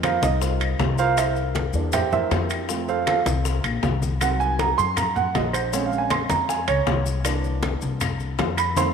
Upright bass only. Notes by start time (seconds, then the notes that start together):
Already playing: F2
0.22 C2
0.79 C2
1.73 E2
2.31 F2
3.26 C2
3.64 A#1
3.83 C2
4.78 F#2
5.35 A#1
6.30 F2
6.68 C#2
6.87 C2
7.82 C2
8.39 F2